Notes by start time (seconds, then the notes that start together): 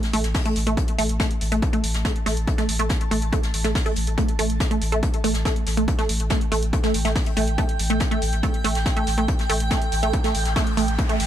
Already playing: A5
0.03 snare, closed hi-hat
0.13 A1 A3, closed hi-hat, open hi-hat
0.24 A1, snare, closed hi-hat
0.34 kick, snare, closed hi-hat, open hi-hat
0.45 A3, closed hi-hat
0.56 A1, closed hi-hat, open hi-hat
0.67 A1 A3, closed hi-hat
0.77 kick, closed hi-hat
0.88 closed hi-hat
0.98 A1 A3, closed hi-hat, open hi-hat
1.09 A1, closed hi-hat
1.20 A3, kick, snare, closed hi-hat
1.31 closed hi-hat
1.41 A1, closed hi-hat, open hi-hat
1.52 A1 A3, closed hi-hat
1.62 kick, closed hi-hat
1.73 A3, closed hi-hat
1.84 A1, closed hi-hat, open hi-hat
1.94 A1, snare, closed hi-hat
2.05 A3, kick, snare, closed hi-hat
2.16 closed hi-hat
2.26 A1 A3, snare, closed hi-hat, open hi-hat
2.37 A1, closed hi-hat
2.47 kick, closed hi-hat
2.58 A3, snare, closed hi-hat
2.69 A1, closed hi-hat, open hi-hat
2.79 A1 A3, closed hi-hat
2.89 kick, snare, closed hi-hat
3.01 closed hi-hat
3.11 A1 A3, closed hi-hat, open hi-hat
3.22 A1, closed hi-hat
3.33 A3, kick, closed hi-hat
3.43 snare, closed hi-hat
3.54 A1, closed hi-hat, open hi-hat
3.64 A1 A3, snare, closed hi-hat
3.75 kick, snare, closed hi-hat, open hi-hat
3.86 A3, closed hi-hat
3.96 A1, closed hi-hat, open hi-hat
4.07 A1, closed hi-hat
4.18 A3, kick, closed hi-hat
4.28 closed hi-hat
4.39 A1 A3, closed hi-hat, open hi-hat
4.50 A1, closed hi-hat
4.60 kick, snare, closed hi-hat
4.71 A3, closed hi-hat
4.82 A1, closed hi-hat, open hi-hat
4.92 A1 A3, closed hi-hat
5.03 kick, closed hi-hat
5.14 closed hi-hat
5.24 A1 A3, closed hi-hat, open hi-hat
5.34 A1 G5, snare, closed hi-hat
5.45 A3, kick, snare, closed hi-hat
5.56 closed hi-hat
5.66 A1, snare, closed hi-hat, open hi-hat
5.77 A1 A3, closed hi-hat
5.88 kick, closed hi-hat
5.98 A3, snare, closed hi-hat
6.09 A1, closed hi-hat, open hi-hat
6.20 A1, closed hi-hat
6.30 A3, kick, snare, closed hi-hat
6.41 closed hi-hat
6.52 A1 A3, closed hi-hat, open hi-hat
6.63 A1, closed hi-hat
6.73 kick, closed hi-hat
6.83 A3, snare, closed hi-hat
6.94 A1, closed hi-hat, open hi-hat
7.05 A1 A3, snare, closed hi-hat
7.16 kick, snare, closed hi-hat, open hi-hat
7.26 closed hi-hat
7.37 A1 A3, closed hi-hat, open hi-hat
7.48 A1, closed hi-hat
7.58 A3, kick, closed hi-hat
7.69 closed hi-hat
7.79 A1, closed hi-hat, open hi-hat
7.90 A1 A3, closed hi-hat
8.00 kick, snare, closed hi-hat
8.11 A3, closed hi-hat
8.22 A1, closed hi-hat, open hi-hat
8.32 A1, closed hi-hat
8.43 A3, kick, closed hi-hat
8.54 closed hi-hat
8.64 A1 A3, closed hi-hat, open hi-hat
8.75 A1, snare, closed hi-hat
8.86 kick, snare, closed hi-hat
8.96 A3, closed hi-hat
9.07 A1, snare, closed hi-hat, open hi-hat
9.18 A1 A3, closed hi-hat
9.28 kick, closed hi-hat, riser
9.39 snare, closed hi-hat
9.50 A1 A3, closed hi-hat, open hi-hat
9.60 A1, closed hi-hat
9.70 A3, kick, snare, closed hi-hat
9.82 closed hi-hat
9.92 A1, closed hi-hat, open hi-hat
10.03 A1 A3, closed hi-hat
10.13 kick, closed hi-hat
10.24 A3, snare, closed hi-hat
10.34 A1, closed hi-hat, open hi-hat
10.45 A1, snare, closed hi-hat
10.55 A3, kick, snare, closed hi-hat, open hi-hat
10.67 closed hi-hat
10.77 A1 A3, closed hi-hat, open hi-hat
10.88 A1, closed hi-hat
10.98 kick, closed hi-hat
11.09 A3, closed hi-hat
11.20 A1, closed hi-hat, open hi-hat